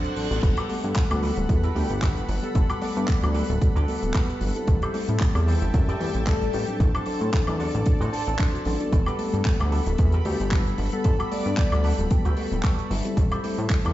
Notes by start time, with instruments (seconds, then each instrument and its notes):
Already playing: reed electric piano F#3 C4 D4 A4, clean electric guitar D4 F#4 A4 C5, analog synth pad A4 C5 D5 F#5, reverse cymbal
0.04 closed hi-hat
0.16 analog synth bass A1, reed electric piano F#3 C4 D4 A4, open hi-hat
0.30 analog synth bass A1, reed electric piano G3 B3 F#4 A4, closed hi-hat
0.42 analog synth bass G1, synth arpeggio sound F#3, analog synth pad A4 B5, muted clean electric guitar stroke, kick, closed hi-hat, crash
0.57 clean electric guitar F#4 G4 A4 B4, synth arpeggio sound F#4, closed hi-hat, high woodblock
0.69 reed electric piano G3 B3 A4 F#5, synth arpeggio sound A3, open hi-hat
0.84 analog synth bass G2, synth arpeggio sound B3, closed hi-hat
0.96 synth arpeggio sound A3, kick, clap, closed hi-hat
1.10 analog synth bass D2, reed electric piano G3 B3 A4 F#5, synth arpeggio sound G3, muted clean electric guitar stroke, closed hi-hat, high woodblock
1.22 synth arpeggio sound F#3, clean electric guitar F#4 G4 A4 B4, open hi-hat
1.37 analog synth bass D1, synth arpeggio sound G3, closed hi-hat
1.48 analog synth bass E2, synth arpeggio sound F#3, reed electric piano G3 B3 F#4 A4, muted clean electric guitar stroke, kick, closed hi-hat
1.63 clean electric guitar F#4 G4 A4 B4, synth arpeggio sound F#4, closed hi-hat
1.75 analog synth bass D2, reed electric piano G3 B3 F#4 A4, synth arpeggio sound A3, analog synth lead G4, open hi-hat
1.90 analog synth bass G1, synth arpeggio sound B3, closed hi-hat
2.02 reed electric piano G3 B3 F#5, synth arpeggio sound A3, clean electric guitar F#4 G4 A4 B4, kick, clap, closed hi-hat
2.17 synth arpeggio sound G3, closed hi-hat
2.29 analog synth bass G1, synth arpeggio sound F#3, open hi-hat
2.43 reed electric piano G3 B3 A4 F#5, synth arpeggio sound G3, analog synth lead A4, closed hi-hat
2.55 analog synth bass G1, synth arpeggio sound F#3, analog synth lead A4, muted clean electric guitar stroke, kick, closed hi-hat
2.69 clean electric guitar F#4 G4 A4 B4, synth arpeggio sound F#4, closed hi-hat, high woodblock
2.81 reed electric piano G3 B3 A4 F#5, synth arpeggio sound A3, analog synth lead D5, open hi-hat
2.96 analog synth bass G2, synth arpeggio sound B3, closed hi-hat
3.08 synth arpeggio sound A3, kick, clap, closed hi-hat
3.23 analog synth bass D2, reed electric piano G3 B3 A4 F#5, synth arpeggio sound G3, muted clean electric guitar stroke, closed hi-hat, high woodblock
3.34 synth arpeggio sound F#3, clean electric guitar F#4 G4 A4 B4, open hi-hat
3.49 analog synth bass D1, synth arpeggio sound G3, closed hi-hat
3.61 synth arpeggio sound F#3, reed electric piano G3 B3 F#4 A4, muted clean electric guitar stroke, kick, closed hi-hat
3.75 analog synth bass D2, clean electric guitar F#4 G4 A4 D5, synth arpeggio sound F#4, closed hi-hat
3.88 reed electric piano G3 B3 F#4 A4, synth arpeggio sound A3, open hi-hat
4.03 analog synth bass D1, synth arpeggio sound B3, closed hi-hat
4.14 reed electric piano G3 B3 F#5, synth arpeggio sound A3, clean electric guitar F#4 G4 A4 B4, kick, clap, closed hi-hat
4.29 synth arpeggio sound G3, closed hi-hat
4.41 analog synth bass G1, synth arpeggio sound F#3, open hi-hat
4.55 reed electric piano G3 C4 E4 A4, synth arpeggio sound G3, closed hi-hat
4.67 analog synth bass A1, synth arpeggio sound E3, analog synth pad E5 G5 A5, muted clean electric guitar stroke, kick, closed hi-hat
4.82 clean electric guitar E4 G4 A4 C5, synth arpeggio sound G4, closed hi-hat, high woodblock
4.94 reed electric piano G3 C4 E4 A4, synth arpeggio sound A3, open hi-hat
5.09 analog synth bass A2, synth arpeggio sound C4, closed hi-hat
5.20 synth arpeggio sound A3, kick, clap, closed hi-hat
5.35 analog synth bass E2, reed electric piano G3 C4 E4 A4, synth arpeggio sound G3, muted clean electric guitar stroke, closed hi-hat, high woodblock
5.47 synth arpeggio sound E3, clean electric guitar E4 G4 A4 C5, open hi-hat
5.62 analog synth bass G1, synth arpeggio sound G3, closed hi-hat
5.74 analog synth bass F#2, synth arpeggio sound E3, reed electric piano G3 C4 E4 A4, muted clean electric guitar stroke, kick, closed hi-hat
5.88 clean electric guitar E4 G4 A4 D5, synth arpeggio sound G4, closed hi-hat
6.00 analog synth bass E2, reed electric piano G3 C4 E4 A4, synth arpeggio sound A3, analog synth lead G4, open hi-hat
6.15 analog synth bass A1, synth arpeggio sound C4, closed hi-hat
6.27 reed electric piano G3 E4 B4, synth arpeggio sound A3, clean electric guitar E4 G4 A4 D5, analog synth lead A4, kick, clap, closed hi-hat
6.41 synth arpeggio sound G3, closed hi-hat
6.53 analog synth bass A1, synth arpeggio sound E3, analog synth lead G4, open hi-hat
6.67 reed electric piano F#3 C4 D4 A4, synth arpeggio sound G3, closed hi-hat
6.79 analog synth bass A1, synth arpeggio sound F#3, analog synth pad D5, muted clean electric guitar stroke, kick, closed hi-hat
6.94 clean electric guitar D4 F#4 A4 C5, synth arpeggio sound A4, closed hi-hat, high woodblock
7.06 reed electric piano F#3 C4 D4 A4, synth arpeggio sound C4, open hi-hat
7.21 analog synth bass A2, synth arpeggio sound D4, closed hi-hat
7.33 synth arpeggio sound C4, kick, clap, closed hi-hat
7.47 analog synth bass E2, reed electric piano F#3 C4 D4 A4, synth arpeggio sound A3, muted clean electric guitar stroke, closed hi-hat, high woodblock
7.59 synth arpeggio sound F#3, clean electric guitar D4 F#4 A4 C5, open hi-hat
7.74 analog synth bass A1, synth arpeggio sound A3, closed hi-hat
7.85 reed electric piano F#3 C4 D4 A4, synth arpeggio sound F#3, muted clean electric guitar stroke, kick, closed hi-hat
8.00 analog synth bass A1, clean electric guitar D4 F#4 A4 C5, synth arpeggio sound A4, closed hi-hat
8.13 synth arpeggio sound D4, analog synth lead A4, open hi-hat
8.27 analog synth bass A1, synth arpeggio sound C4, analog synth lead A4, closed hi-hat
8.39 reed electric piano F#3 C4 D4 A4, synth arpeggio sound C4, clean electric guitar D4 F#4 A4 C5, kick, clap, closed hi-hat
8.54 synth arpeggio sound F#4, closed hi-hat
8.65 analog synth bass A1, reed electric piano F#3 C4 D4 A4, synth arpeggio sound A3, open hi-hat
8.80 reed electric piano G3 B3 F#4 A4, synth arpeggio sound D4, closed hi-hat
8.92 analog synth bass G1, synth arpeggio sound F#3, analog synth pad B5, muted clean electric guitar stroke, kick, closed hi-hat
9.06 clean electric guitar F#4 G4 A4 B4, synth arpeggio sound F#4, closed hi-hat, high woodblock
9.18 reed electric piano G3 B3 A4 F#5, synth arpeggio sound A3, open hi-hat
9.33 analog synth bass G2, synth arpeggio sound B3, closed hi-hat
9.45 synth arpeggio sound A3, kick, clap, closed hi-hat
9.60 analog synth bass D2, reed electric piano G3 B3 A4 F#5, synth arpeggio sound G3, muted clean electric guitar stroke, closed hi-hat, high woodblock
9.71 synth arpeggio sound F#3, clean electric guitar F#4 G4 A4 B4, open hi-hat
9.87 analog synth bass D1, synth arpeggio sound G3, closed hi-hat
9.98 analog synth bass E2, synth arpeggio sound F#3, reed electric piano G3 B3 F#4 A4, muted clean electric guitar stroke, kick, closed hi-hat
10.12 clean electric guitar F#4 G4 A4 B4, synth arpeggio sound F#4, closed hi-hat
10.25 analog synth bass D2, reed electric piano G3 B3 F#4 A4, synth arpeggio sound A3, analog synth lead G4, open hi-hat
10.40 analog synth bass G1, synth arpeggio sound B3, closed hi-hat
10.51 reed electric piano G3 B3 B4 F#5, synth arpeggio sound A3, clean electric guitar F#4 G4 A4 B4, kick, clap, closed hi-hat
10.66 synth arpeggio sound G3, closed hi-hat
10.78 analog synth bass G1, synth arpeggio sound F#3, open hi-hat
10.92 reed electric piano G3 B3 A4 F#5, synth arpeggio sound G3, analog synth lead A4, closed hi-hat
11.04 analog synth bass G1, synth arpeggio sound F#3, analog synth lead A4, muted clean electric guitar stroke, kick, closed hi-hat
11.19 clean electric guitar F#4 G4 A4 B4, synth arpeggio sound F#4, closed hi-hat, high woodblock
11.31 reed electric piano G3 B3 A4 F#5, synth arpeggio sound A3, analog synth lead D5, open hi-hat
11.46 analog synth bass G2, synth arpeggio sound B3, closed hi-hat
11.57 kick, clap, closed hi-hat
11.72 analog synth bass D2, reed electric piano G3 B3 A4 F#5, synth arpeggio sound G3, muted clean electric guitar stroke, closed hi-hat, high woodblock
11.84 synth arpeggio sound F#3, clean electric guitar F#4 G4 A4 D5 A5, open hi-hat
11.99 analog synth bass D1, synth arpeggio sound G3, closed hi-hat
12.10 synth arpeggio sound F#3, reed electric piano G3 B3 F#4 A4, clean electric guitar G5, muted clean electric guitar stroke, kick, closed hi-hat
12.25 analog synth bass D2, clean electric guitar F#4 G4 A4 B4, synth arpeggio sound F#4, closed hi-hat
12.37 reed electric piano G3 B3 F#4 A4, synth arpeggio sound A3, clean electric guitar G5, open hi-hat
12.52 analog synth bass D1, synth arpeggio sound B3, closed hi-hat
12.63 reed electric piano G3 B3 B4, synth arpeggio sound A3, clean electric guitar F#4 G4 A4 D5, kick, clap, closed hi-hat
12.78 synth arpeggio sound G3, closed hi-hat
12.90 analog synth bass G1, synth arpeggio sound F#3, clean electric guitar E5, open hi-hat
13.05 reed electric piano G3 C4 E4 A4, synth arpeggio sound G3, closed hi-hat
13.16 analog synth bass A1, synth arpeggio sound E3, analog synth pad A4 C5 E5, muted clean electric guitar stroke, kick, closed hi-hat
13.31 clean electric guitar E4 G4 A4 C5, synth arpeggio sound G4, closed hi-hat, high woodblock
13.43 reed electric piano G3 C4 E4 A4, synth arpeggio sound A3, open hi-hat
13.58 analog synth bass A2, synth arpeggio sound C4, closed hi-hat
13.70 synth arpeggio sound A3, kick, clap, closed hi-hat
13.84 analog synth bass E2, reed electric piano G3 C4 E4 A4, synth arpeggio sound G3, muted clean electric guitar stroke, closed hi-hat, high woodblock